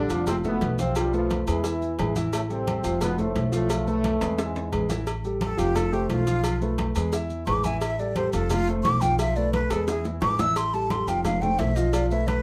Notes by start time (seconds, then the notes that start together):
Already playing: D3 D4
0.10 F1 F3 F4 F5, cowbell, high conga, low agogo, maracas
0.27 C3 C4, cowbell, high conga, low conga, low agogo, maracas
0.44 B2 A3 B3 A4 E5, high conga, low conga, maracas
0.61 B1, cowbell, high conga, low timbale, low agogo, maracas
0.79 C3 F3 C4 F4 F5, cowbell, high conga, maracas
0.96 G2 F3 G3 F4 F5, cowbell, high conga, low agogo, maracas
1.13 F3 A3 F4 A4 B4, high conga, maracas
1.30 cowbell, high conga, low timbale, low agogo, maracas
1.47 E2 E3 G#3 E4 G#4 B4, cowbell, high conga, low agogo, maracas
1.64 E3 E4 E5, cowbell, high conga, maracas
1.82 high conga, maracas
1.98 A1 G#3 G#4 B4, cowbell, high conga, low timbale, low agogo, maracas
2.15 E3 E4 E5, cowbell, high conga, maracas
2.32 A2 A3, cowbell, high conga, low agogo, maracas
2.49 C3 G3 C4 G4 A4, high conga, maracas
2.66 G3 G4 A4, cowbell, high conga, low timbale, low agogo, maracas
2.83 F1 F3 F4 F5, cowbell, high conga, low agogo, maracas
3.01 B2 B3, cowbell, high conga, low conga, low agogo, maracas
3.17 A2 A3 A4 C5, high conga, low conga, maracas
3.35 B1, cowbell, high conga, low timbale, low agogo, maracas
3.52 A2 F3 A3 F4 F5, cowbell, maracas
3.69 F3 F4 F5, cowbell, high conga, low agogo, maracas
3.87 A2 A3 A4 B4, high conga, maracas
4.04 cowbell, high conga, low timbale, low agogo, maracas
4.21 E2 G#3 G#4 B4, cowbell, high conga, high timbale, low agogo, maracas
4.38 G#2 E3 G#3 E4 E5, cowbell, high conga, high timbale, maracas
4.55 high conga, high timbale, maracas
4.72 A1 G#3 G#4 B4, cowbell, high conga, low agogo, maracas
4.89 E3 E4 E5, cowbell, high conga, low timbale, maracas
5.07 cowbell, high conga, low agogo, maracas
5.24 G3 G4 A4, high conga, maracas
5.41 G3 G4 A4, cowbell, high conga, low timbale, low agogo, maracas
5.57 F1 F3 F4 G4 F5, cowbell, high conga, low agogo, maracas
5.75 A4, cowbell, high conga, low conga, low agogo, maracas
5.92 A3 G4 A4 C5, high conga, maracas
6.09 B1 F4, cowbell, high conga, low timbale, low agogo, maracas
6.26 F3 F4 F5, cowbell, maracas
6.44 F3 F4 F5, cowbell, high conga, low agogo, maracas
6.61 A3 A4 B4, high conga, maracas
6.78 cowbell, high conga, low timbale, low agogo, maracas
6.95 E2 G#3 G#4 B4, cowbell, high conga, low agogo, maracas
7.13 E3 E4 E5, cowbell, high conga, maracas
7.30 high conga, maracas
7.46 A1 G#3 G#4 B4 D6, cowbell, high conga, low timbale, low agogo, maracas
7.64 E3 E4 E5 G#5, cowbell, high conga, maracas
7.81 E5, cowbell, high conga, low agogo, maracas
7.99 G3 G4 A4 D5, high conga, maracas
8.15 G3 G4 A4 C5, cowbell, high conga, low timbale, low agogo, maracas
8.33 F1 F3 F4 A4 F5, cowbell, high conga, low agogo, maracas
8.50 F4, cowbell, high conga, low conga, low agogo, maracas
8.67 A3 A4 C5, high conga, maracas
8.84 B1 D6, cowbell, high conga, low timbale, low agogo, maracas
9.01 F3 F4 F5 G5, cowbell, high conga, maracas
9.19 F3 F4 E5 F5, cowbell, high conga, low agogo, maracas
9.36 A3 A4 B4 D5, high conga, maracas
9.53 B4, cowbell, high conga, low timbale, low agogo, maracas
9.70 E2 G#3 G#4 A4 B4, cowbell, high bongo, high conga, low agogo, maracas
9.88 E3 E4 G#4 E5, cowbell, high bongo, high conga, maracas
10.05 low bongo, high conga, maracas
10.22 A1 G#3 G#4 B4 D6, cowbell, low bongo, high conga, low timbale, low agogo, maracas
10.39 E3 E4 E5 E6, cowbell, low bongo, high conga, maracas
10.56 C6, cowbell, high conga, low agogo, maracas
10.73 G3 G4 A4 A5, high conga, maracas
10.90 G3 G4 A4 C6, cowbell, high conga, low timbale, low agogo, maracas
11.07 F1 F3 F4 F5 G5, cowbell, high conga, low agogo, maracas
11.24 F5, cowbell, high conga, low conga, low agogo, maracas
11.42 A3 A4 C5 G5, high conga, low conga, maracas
11.59 B1 E5, cowbell, high conga, low timbale, low agogo, maracas
11.75 F3 F4 D#5 F5, cowbell, maracas
11.93 F3 F4 D5 F5, cowbell, high conga, low agogo, maracas
12.10 A3 A4 B4 E5, high conga, maracas
12.27 B4, cowbell, high conga, low timbale, low agogo, maracas